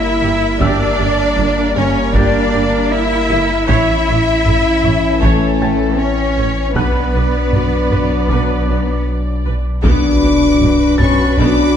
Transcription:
Already playing: G1 G3 A#3 E4 A#4 E5
0.22 G1 G4
0.60 G1 G3 A#3 D4 G4 A#4 D5 E5 E6, taiko
0.98 G1 G4
1.37 G1 D4, taiko low-mid
1.75 G1 C#4 G4 C#5, taiko low-mid
2.14 G1 D4 G4 D5 A6, taiko
2.53 G1 G4
2.91 E4 E5
3.29 G1 G4
3.67 A1 E3 C#4 E4 C#5 E5, taiko
4.07 A1 C#5
4.45 A1 A4, taiko low-mid
4.84 A1 C#5, taiko low-mid
5.20 A1 A3 A4 C#5, taiko
5.60 A1 C#5 G5 A6
5.98 C#4 C#5
6.38 A1 C#5
6.74 B1 F#3 B3 D4 B4 D5 F#5 F#6, taiko
7.15 B1 B4
7.53 B1 F#3, taiko low-mid
7.91 B1 B4, taiko low-mid
8.29 B1 B4 D6, taiko
8.69 B1 B4
9.45 B1 B4
9.83 B1 B2 B3 D4 F#4 B4 B5 D6, taiko, sub drop
10.22 B1 B2 B3
10.61 B1 B2 F#3, taiko low-mid
10.98 B1 B2 B3 C#4 C#6 A6, taiko low-mid
11.38 B1 B2 B3 D4 D6, taiko

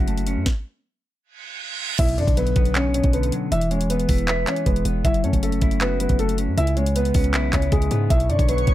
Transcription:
Already playing: F#3 C#4 E4 F#4
0.00 F#1
0.08 A3, closed hi-hat
0.18 closed hi-hat
0.27 C#4, closed hi-hat
0.36 F#2
0.46 kick, snare
1.22 reverse cymbal
1.99 B1 B2 E4 E5, kick, closed hi-hat, crash, impact
2.09 closed hi-hat
2.18 F#2 D3 D4 D5, closed hi-hat
2.27 B1, kick, closed hi-hat
2.37 F#3 B3 B4, closed hi-hat
2.47 closed hi-hat
2.56 B1 B3, kick, closed hi-hat
2.65 closed hi-hat
2.75 C#4 C#5, clap, closed hi-hat
2.94 B2 C#4 C#5, closed hi-hat
3.04 B1, kick, closed hi-hat
3.13 D3 B3 B4, closed hi-hat
3.23 closed hi-hat
3.32 F#3, closed hi-hat
3.52 E1 E3 E4 E5, closed hi-hat
3.61 closed hi-hat
3.71 G#3 C#4 C#5, closed hi-hat
3.81 closed hi-hat
3.90 B3 B4, closed hi-hat
4.00 closed hi-hat
4.09 E1 E4, kick, open hi-hat
4.18 closed hi-hat
4.28 B3 B4 E5, clap, closed hi-hat
4.47 E3 C#4 C#5, clap, closed hi-hat
4.56 closed hi-hat
4.66 E1 G#3 B3 B4, kick, closed hi-hat
4.76 closed hi-hat
4.85 E1 B3, closed hi-hat
5.05 F#1 F#3 E4 E5, kick, closed hi-hat
5.14 closed hi-hat
5.24 F#2 A3 C#4 C#5, closed hi-hat
5.33 F#1, kick, closed hi-hat
5.43 A3 C#4 A4, closed hi-hat
5.52 closed hi-hat
5.62 F#1 E4, kick, closed hi-hat
5.71 closed hi-hat
5.81 B3 F#4 B4, clap, closed hi-hat
6.00 F#3 B3 B4, closed hi-hat
6.09 F#1, kick, closed hi-hat
6.19 A3 A4, closed hi-hat
6.29 closed hi-hat
6.38 C#4, closed hi-hat
6.48 F#2
6.58 C#2 C#3 E4 E5, closed hi-hat
6.67 closed hi-hat
6.77 G#3 C#4 C#5, closed hi-hat
6.86 closed hi-hat
6.96 B3 B4, closed hi-hat
7.05 closed hi-hat
7.14 C#2 C#4, kick, open hi-hat
7.24 closed hi-hat
7.34 B1 B3 E4 B4, clap, closed hi-hat
7.53 C#2 C#3 C#4 C#5, kick, clap, closed hi-hat
7.62 closed hi-hat
7.72 C#2 G#3 G#4, kick, closed hi-hat
7.82 closed hi-hat
7.91 G#2 B3, closed hi-hat
8.10 B1 B2 E4 B4 C#5 E5 C#6, kick, closed hi-hat
8.20 closed hi-hat
8.29 F#2 D3 D4 D5, closed hi-hat
8.39 B1, kick, closed hi-hat
8.49 F#3 B3 B4, closed hi-hat
8.58 closed hi-hat
8.67 B1 B3, kick, closed hi-hat

